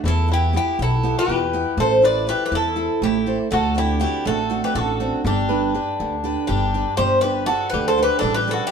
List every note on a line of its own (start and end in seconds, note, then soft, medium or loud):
0.04 0.56 E2 loud
0.04 0.53 E3 medium
0.04 0.28 E4 medium
0.08 0.29 A4 medium
0.28 0.52 B3 soft
0.28 0.53 E4 soft
0.28 0.53 E4 medium
0.28 0.53 G4 soft
0.33 0.54 G4 medium
0.53 0.93 B3 soft
0.53 0.94 E4 soft
0.53 0.78 E4 medium
0.53 0.94 G4 soft
0.57 0.79 G4 medium
0.79 1.13 B1 medium
0.79 1.27 B2 medium
0.79 1.15 E4 medium
0.79 1.15 A4 medium
1.03 1.43 B3 medium
1.03 1.43 E4 soft
1.03 1.44 G4 medium
1.19 1.75 G4 medium
1.19 1.80 B4 medium
1.28 1.63 E2 medium
1.28 1.77 E3 medium
1.53 1.73 B3 medium
1.53 1.73 E4 soft
1.53 1.74 G4 medium
1.77 2.30 A1 loud
1.77 2.02 A3 medium
1.77 2.02 A4 medium
1.77 2.04 C5 medium
2.02 2.26 E4 soft
2.02 2.26 A4 soft
2.02 2.27 B4 medium
2.02 2.27 C5 medium
2.02 2.27 D5 medium
2.27 2.67 E4 soft
2.27 2.44 G4 medium
2.27 2.67 A4 soft
2.27 2.45 B4 medium
2.27 2.68 C5 medium
2.45 2.52 G4 medium
2.45 2.52 B4 medium
2.51 2.86 E2 medium
2.51 3.00 E3 medium
2.51 3.00 E4 medium
2.55 3.00 A4 medium
2.76 3.16 E4 medium
2.76 3.16 A4 soft
2.76 3.16 C5 medium
3.02 3.36 A1 medium
3.02 3.50 A3 medium
3.02 3.38 E4 medium
3.02 3.37 G4 medium
3.26 3.46 E4 medium
3.26 3.47 A4 soft
3.26 3.47 C5 medium
3.51 4.03 D2 loud
3.51 3.99 D3 medium
3.51 3.75 F#4 medium
3.51 3.77 A4 medium
3.75 3.98 C4 medium
3.75 3.99 D4 soft
3.75 3.99 F#4 medium
3.75 4.00 G4 medium
3.79 4.01 E4 medium
4.00 4.40 C4 medium
4.00 4.40 D4 soft
4.00 4.40 F#4 soft
4.00 4.26 G4 medium
4.04 4.25 E4 medium
4.25 4.60 A1 medium
4.25 4.74 A3 medium
4.25 4.61 F#4 medium
4.25 4.64 A4 medium
4.50 4.90 C4 medium
4.50 4.90 D4 soft
4.50 4.90 F#4 medium
4.64 4.75 G4 medium
4.64 4.75 B4 medium
4.75 5.10 A1 medium
4.75 5.23 D3 medium
4.75 5.23 F#4 medium
4.75 5.21 A4 medium
5.00 5.20 C4 medium
5.00 5.20 D4 soft
5.00 5.20 F#4 medium
5.24 5.77 G1 loud
5.24 5.73 G3 medium
5.24 6.46 D4 medium
5.24 6.45 G4 medium
5.49 5.73 D4 soft
5.49 5.74 G4 soft
5.49 5.74 B4 medium
5.75 6.14 D4 soft
5.75 6.14 G4 soft
5.75 6.15 B4 soft
6.00 6.34 D2 medium
6.00 6.48 D3 medium
6.24 6.63 D4 medium
6.24 6.64 G4 soft
6.24 6.64 B4 medium
6.47 6.83 G1 medium
6.47 6.97 G3 medium
6.47 6.94 D4 medium
6.47 6.97 G4 medium
6.74 6.94 D4 medium
6.74 6.94 G4 soft
6.74 6.94 B4 medium
6.97 7.50 G1 loud
6.97 7.47 G3 medium
6.97 7.21 G4 medium
6.97 7.21 C5 medium
7.21 7.47 D4 soft
7.21 7.46 G4 medium
7.21 7.48 G4 soft
7.21 7.46 B4 medium
7.25 7.47 B4 soft
7.46 7.87 D4 soft
7.46 7.70 F#4 medium
7.46 7.88 G4 soft
7.46 7.69 A4 medium
7.46 7.88 B4 soft
7.70 8.07 D2 medium
7.70 7.87 G4 medium
7.70 7.86 B4 medium
7.74 8.21 D3 medium
7.88 8.03 A4 medium
7.88 8.02 C5 medium
7.98 8.37 D4 medium
7.98 8.37 G4 soft
7.98 8.37 B4 medium
8.03 8.20 G4 medium
8.03 8.18 B4 medium
8.19 8.56 A1 medium
8.19 8.70 G3 medium
8.19 8.36 D4 medium
8.19 8.34 A4 medium
8.34 8.53 G4 medium
8.34 8.51 B4 medium
8.48 8.67 D4 medium
8.48 8.68 G4 soft
8.48 8.66 A4 medium
8.48 8.68 B4 medium
8.53 8.69 F#4 medium
8.67 8.71 G4 medium